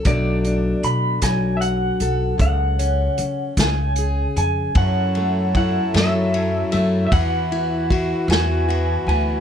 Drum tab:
RD |------|------|xxxxxx|xxxxxx|
HH |xxxxxx|xxxxxx|------|------|
SD |---r--|---o--|---o--|---o--|
BD |o--o--|o--o--|o-o---|o-o---|